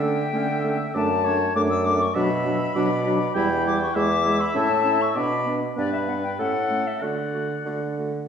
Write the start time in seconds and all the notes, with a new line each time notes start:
Already playing: D3 G5
0.02 A3 C#4 E5
0.33 D3 A3 C#4
0.64 A3 C#4
0.94 F#2 A3 D4 D5 A5
1.25 A3 D4 C#5
1.55 F#2 A3 D4 D5 D6
1.69 E6
1.84 A3 D4 D6
2.01 C#6
2.14 B2 F#3 D4 E5 B5
2.44 F#3 D4
2.75 B2 F#3 D4 D5
3.05 F#3 D4
3.34 E2 G3 E4 G5 B5
3.66 G3 E4 D6
3.82 C#6
3.94 E2 G#3 E4 E5 D6
4.25 G#3 E4
4.40 B5
4.55 A2 C#4 E4 A5
4.84 C#4 E4
5.01 C#6
5.15 B2 B3 D4 D5 B5
5.46 B3 D4
5.76 G2 B3 D4 B4 D5
5.92 E5
6.07 B3 D4 F#5
6.23 G5
6.39 A2 A3 C#4 A4 F#5
6.70 A3 C#4
6.87 E5
7.01 D3 A3 F#4 D5 F#5
7.34 A3 F#4
7.65 D3 A3 F#4
7.98 A3 F#4